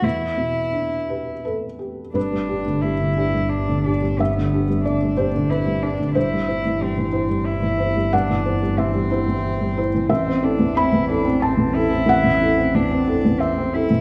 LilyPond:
<<
  \new Staff \with { instrumentName = "Cello" } { \time 3/4 \key g \major \tempo 4 = 91 e'2 r4 | d'4 e'4 d'8 d'8 | b4 d'4 e'8 d'8 | e'4 c'4 e'4 |
d'4 c'2 | c'8 d'8 e'8 d'8 c'8 e'8~ | e'4 d'4 c'8 e'8 | }
  \new Staff \with { instrumentName = "Felt piano" } { \time 3/4 \key g \major << { r4. b'8 a'4 | b'2. | e''4 d''8 c''8 b'4 | c''2. |
fis''4 e''8 r4. | e''4 b''4 a''4 | fis''2 e''4 | } \\ { e,8 b,8 d'8 g'8 b'8 g'8 | g,16 g16 <d' g'>16 d16 g16 d16 <d' g'>16 g8 d16 <d' g'>16 g16 | g,16 d16 <d' g'>16 g16 d16 g16 <d' g'>16 d8 g16 <d' g'>16 d16 | g,16 g16 <e' c''>16 e16 g16 e16 <e' c''>16 g8 e16 <e' c''>16 g16 |
g,16 e16 <e' c''>16 g16 e16 g16 <e' c''>16 e8 g16 <e' c''>16 e16 | a,,16 c'16 <e' a'>16 e,16 c'16 e,16 <e' a'>16 c'8 e,16 <e' a'>16 c'16 | a,,16 e,16 <e' a'>16 c'16 e,16 c'16 <e' a'>16 e,8 c'16 <e' a'>16 e,16 | } >> }
  \new Staff \with { instrumentName = "Double bass" } { \clef bass \time 3/4 \key g \major r2. | g,,2.~ | g,,2. | g,,2.~ |
g,,2. | a,,2.~ | a,,2. | }
>>